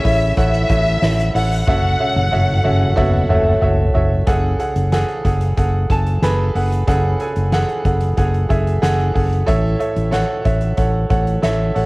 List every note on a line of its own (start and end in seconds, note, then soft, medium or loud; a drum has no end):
0.00 1.69 A2 medium
0.00 0.66 C#3 loud
0.00 1.69 E3 medium
0.00 0.66 C#4 loud
0.00 0.04 E4 loud
0.00 0.05 A4 medium
0.00 0.05 C#5 medium
0.00 0.05 E5 loud
0.00 0.37 E5 medium
0.04 0.32 A1 loud
0.04 0.35 E4 medium
0.04 0.36 A4 medium
0.04 0.36 C#5 medium
0.04 0.36 E5 medium
0.04 kick medium
0.04 hi-hat pedal medium
0.04 open hi-hat medium
0.20 open hi-hat medium
0.37 0.64 A1 loud
0.37 0.68 E4 loud
0.37 0.68 A4 medium
0.37 0.68 C#5 medium
0.37 1.31 E5 medium
0.37 0.68 F#5 loud
0.37 kick medium
0.37 hi-hat pedal medium
0.37 open hi-hat medium
0.54 hi-hat pedal medium
0.69 0.97 A1 loud
0.69 1.00 E4 medium
0.69 1.01 A4 medium
0.69 1.01 C#5 medium
0.69 1.01 E5 medium
0.69 kick medium
0.69 hi-hat pedal medium
0.69 open hi-hat medium
0.86 open hi-hat soft
1.02 1.29 A1 medium
1.02 1.33 E4 medium
1.02 1.33 A4 medium
1.02 1.33 C#5 medium
1.02 1.34 E5 medium
1.02 snare loud
1.02 hi-hat pedal medium
1.02 open hi-hat loud
1.19 hi-hat pedal medium
1.19 open hi-hat soft
1.34 1.62 A1 medium
1.34 1.66 E4 medium
1.34 1.66 A4 medium
1.34 1.66 C#5 medium
1.34 1.66 E5 medium
1.34 3.59 F#5 medium
1.34 hi-hat pedal medium
1.34 open hi-hat medium
1.52 hi-hat pedal medium
1.52 open hi-hat medium
1.67 1.94 F#1 medium
1.67 2.61 C#3 medium
1.67 1.98 F#4 loud
1.67 1.98 A4 medium
1.67 1.98 C#5 medium
1.67 1.99 E5 loud
1.67 kick loud
1.67 high tom medium
1.84 high tom medium
1.99 2.26 C#3 medium
1.99 2.26 C#4 medium
1.99 2.30 F#4 medium
1.99 2.30 A4 medium
1.99 2.30 C#5 medium
1.99 2.31 E5 medium
1.99 high tom medium
2.16 2.30 F#1 loud
2.16 high tom medium
2.31 2.59 F#1 loud
2.31 2.58 A2 medium
2.31 2.58 A3 loud
2.31 2.62 F#4 medium
2.31 2.62 A4 medium
2.31 2.63 C#5 medium
2.31 2.63 E5 loud
2.31 mid tom medium
2.49 mid tom medium
2.64 2.92 F#1 loud
2.64 2.91 C#3 loud
2.64 2.91 C#4 loud
2.64 2.94 F#4 medium
2.64 2.95 A4 medium
2.64 2.95 C#5 medium
2.64 2.95 E5 medium
2.64 mid tom medium
2.82 mid tom medium
2.96 3.24 F#1 loud
2.96 3.23 B2 medium
2.96 3.23 B3 loud
2.96 3.27 F#4 loud
2.96 3.28 A4 loud
2.96 3.28 C#5 medium
2.96 3.28 E5 loud
2.96 kick medium
2.96 mid tom medium
3.14 mid tom medium
3.29 3.57 F#1 loud
3.29 3.91 A2 loud
3.29 3.91 A3 loud
3.29 3.60 F#4 medium
3.29 3.60 A4 medium
3.29 3.61 C#5 medium
3.29 3.61 E5 loud
3.29 mid tom loud
3.47 mid tom medium
3.61 3.89 F#1 medium
3.61 3.93 F#4 medium
3.61 3.93 A4 medium
3.61 3.93 C#5 medium
3.61 3.93 E5 loud
3.61 floor tom loud
3.79 floor tom medium
3.94 4.21 F#1 loud
3.94 4.25 F#4 medium
3.94 4.25 A4 medium
3.94 4.25 C#5 medium
3.94 4.26 E5 medium
3.94 floor tom loud
4.11 floor tom medium
4.27 4.54 F#1 loud
4.27 5.21 C#3 medium
4.27 4.57 G#4 loud
4.27 4.58 A4 loud
4.27 4.58 F#5 loud
4.27 kick loud
4.27 closed hi-hat loud
4.59 4.90 G#4 medium
4.59 4.90 A4 medium
4.59 4.91 F#5 medium
4.59 closed hi-hat medium
4.76 5.03 F#1 medium
4.76 closed hi-hat soft
4.92 5.23 G#4 loud
4.92 5.23 A4 loud
4.92 5.23 F#5 loud
4.92 snare medium
4.92 closed hi-hat medium
5.09 closed hi-hat soft
5.25 5.52 F#1 loud
5.25 5.55 G#4 medium
5.25 5.56 A4 medium
5.25 5.56 F#5 medium
5.25 kick medium
5.25 closed hi-hat medium
5.41 closed hi-hat medium
5.57 5.84 F#1 loud
5.57 5.88 G#4 medium
5.57 5.88 A4 medium
5.57 5.89 F#5 medium
5.57 kick medium
5.57 closed hi-hat medium
5.90 6.17 F#1 loud
5.90 6.21 A4 medium
5.90 6.21 G#5 medium
5.90 6.21 A5 loud
5.90 kick medium
5.90 closed hi-hat medium
6.07 closed hi-hat soft
6.22 6.49 F#1 medium
6.22 6.53 G#4 loud
6.22 6.53 A4 loud
6.22 6.54 B4 loud
6.22 snare loud
6.22 closed hi-hat loud
6.55 6.82 F#1 medium
6.55 6.86 G#4 medium
6.55 6.86 A4 medium
6.55 6.86 F#5 medium
6.55 open hi-hat medium
6.72 closed hi-hat medium
6.87 7.14 F#1 loud
6.87 7.81 C#3 medium
6.87 7.18 G#4 loud
6.87 7.18 A4 loud
6.87 7.19 F#5 loud
6.87 kick loud
6.87 closed hi-hat loud
7.20 7.51 G#4 medium
7.20 7.51 A4 medium
7.20 7.51 G#5 medium
7.20 closed hi-hat medium
7.36 7.63 F#1 medium
7.36 closed hi-hat soft
7.52 7.83 G#4 loud
7.52 7.84 A4 loud
7.52 7.84 F#5 loud
7.52 snare loud
7.52 closed hi-hat medium
7.69 closed hi-hat soft
7.85 8.12 F#1 loud
7.85 8.16 G#4 medium
7.85 8.16 A4 medium
7.85 8.16 F#5 medium
7.85 kick medium
7.85 closed hi-hat medium
8.01 closed hi-hat medium
8.17 8.44 F#1 loud
8.17 8.48 G#4 medium
8.17 8.48 A4 medium
8.17 8.49 F#5 loud
8.17 kick medium
8.17 closed hi-hat medium
8.34 closed hi-hat soft
8.49 8.77 F#1 loud
8.49 8.80 G#4 medium
8.49 8.81 A4 medium
8.49 8.81 E5 medium
8.49 kick medium
8.49 closed hi-hat medium
8.67 closed hi-hat soft
8.82 9.09 F#1 medium
8.82 9.13 G#4 loud
8.82 9.13 A4 loud
8.82 9.13 F#5 loud
8.82 snare loud
8.82 closed hi-hat loud
9.00 closed hi-hat soft
9.14 9.42 F#1 loud
9.14 9.45 G#4 medium
9.14 9.45 A4 medium
9.14 9.46 F#5 medium
9.14 kick medium
9.14 open hi-hat medium
9.33 closed hi-hat soft
9.46 9.74 A1 loud
9.46 10.41 A2 medium
9.46 10.41 E3 medium
9.46 9.78 A4 loud
9.46 9.78 C#5 loud
9.46 9.78 E5 loud
9.46 kick loud
9.46 closed hi-hat loud
9.79 10.10 A4 medium
9.79 10.10 C#5 medium
9.79 10.11 E5 medium
9.79 closed hi-hat medium
9.96 10.23 A1 medium
9.96 closed hi-hat soft
10.11 10.43 A4 loud
10.11 10.43 C#5 medium
10.11 10.44 F#5 loud
10.11 snare loud
10.11 closed hi-hat medium
10.44 10.72 A1 medium
10.44 10.76 A4 medium
10.44 10.76 C#5 medium
10.44 10.76 E5 medium
10.44 kick medium
10.44 closed hi-hat medium
10.61 closed hi-hat medium
10.77 11.05 A1 loud
10.77 11.08 A4 medium
10.77 11.08 C#5 medium
10.77 11.09 F#5 medium
10.77 kick medium
10.77 closed hi-hat medium
11.10 11.37 A1 loud
11.10 11.41 A4 medium
11.10 11.41 C#5 medium
11.10 11.41 F#5 medium
11.10 kick medium
11.10 closed hi-hat medium
11.27 closed hi-hat soft
11.42 11.70 A1 medium
11.42 11.73 A4 loud
11.42 11.74 C#5 loud
11.42 11.74 E5 loud
11.42 snare loud
11.42 closed hi-hat medium
11.75 11.86 A1 medium
11.75 11.86 A4 medium
11.75 11.86 C#5 medium
11.75 11.86 F#5 medium
11.75 open hi-hat medium